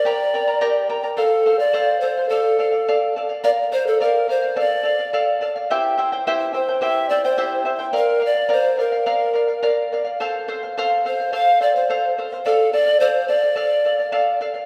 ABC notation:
X:1
M:2/4
L:1/16
Q:1/4=106
K:Dm
V:1 name="Charango"
[GBdgb]2 [Bdgb] [Bdb] [GBdgb]2 [Bdgb] [Bdb] | [Acf]2 [Acf] [cf] [Acf]2 [Acf] [cf] | [Adf]2 [Adf] [df] [Adf]2 [Adf] [df] | [Bdf]2 [Bdf] [df] [Bdf]2 [Bdf] [df] |
[Adf]2 [Adf] [df] [Adf]2 [Adf] [df] | [EGceg]2 [Eceg] [Ecg] [EGceg]2 [Eceg] [Ecg] | [EGceg]2 [Eceg] [Ecg] [EGceg]2 [Eceg] [Ecg] | [Bdf]2 [Bdf] [df] [Bdf]2 [Bdf] [df] |
[Bdf]2 [Bdf] [df] [Bdf]2 [Bdf] [df] | [Acf]2 [Acf] [cf] [Acf]2 [Acf] [cf] | [Acf]2 [Acf] [cf] [Acf]2 [Acf] [cf] | [Adf]2 [Adf] [df] [Adf]2 [Adf] [df] |
[Adf]2 [Adf] [df] [Adf]2 [Adf] [df] |]
V:2 name="Pan flute"
d6 z2 | A3 d3 c2 | A6 z2 | d2 c A B2 c2 |
d6 z2 | z6 c2 | e2 d c3 z2 | B2 d2 c2 B2- |
B6 z2 | z6 c2 | f2 d c3 z2 | A2 d2 c2 d2- |
d6 z2 |]